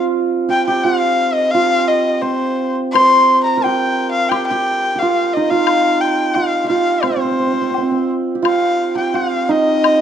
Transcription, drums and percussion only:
2.95 high woodblock medium
3.64 low woodblock soft
4.32 high woodblock soft
5.00 low woodblock soft
5.67 high woodblock medium
6.35 low woodblock soft
7.03 high woodblock soft
7.74 low woodblock soft
8.45 high woodblock soft
9.15 low woodblock soft
9.84 high woodblock medium

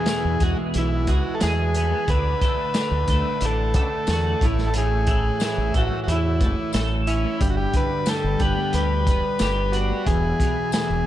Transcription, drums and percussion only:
0.06 snare medium
0.06 closed hi-hat medium
0.06 tambourine medium
0.40 kick medium
0.40 closed hi-hat medium
0.74 closed hi-hat medium
1.07 kick medium
1.07 closed hi-hat medium
1.41 snare loud
1.41 closed hi-hat medium
1.41 tambourine medium
1.75 closed hi-hat medium
2.08 kick loud
2.08 closed hi-hat medium
2.42 kick medium
2.42 closed hi-hat medium
2.74 snare medium
2.74 closed hi-hat medium
2.74 tambourine medium
3.08 kick medium
3.08 closed hi-hat medium
3.41 closed hi-hat medium
3.74 kick medium
3.74 closed hi-hat medium
4.07 snare loud
4.07 closed hi-hat medium
4.07 tambourine medium
4.41 kick medium
4.41 closed hi-hat medium
4.58 snare soft
4.74 closed hi-hat medium
5.07 kick medium
5.07 closed hi-hat medium
5.40 snare medium
5.40 closed hi-hat medium
5.40 tambourine medium
5.74 kick medium
5.74 closed hi-hat medium
6.08 closed hi-hat medium
6.41 kick medium
6.41 closed hi-hat medium
6.73 snare loud
6.73 closed hi-hat medium
6.73 tambourine medium
7.07 closed hi-hat medium
7.41 kick loud
7.41 closed hi-hat medium
7.73 kick medium
7.73 closed hi-hat medium
8.06 snare loud
8.06 closed hi-hat medium
8.06 tambourine medium
8.40 kick medium
8.40 closed hi-hat medium
8.73 closed hi-hat medium
9.07 kick medium
9.07 closed hi-hat medium
9.39 snare loud
9.39 closed hi-hat medium
9.39 tambourine medium
9.73 closed hi-hat medium
10.07 kick medium
10.07 closed hi-hat medium
10.40 kick medium
10.40 closed hi-hat medium
10.72 snare loud
10.72 closed hi-hat medium
10.72 tambourine medium

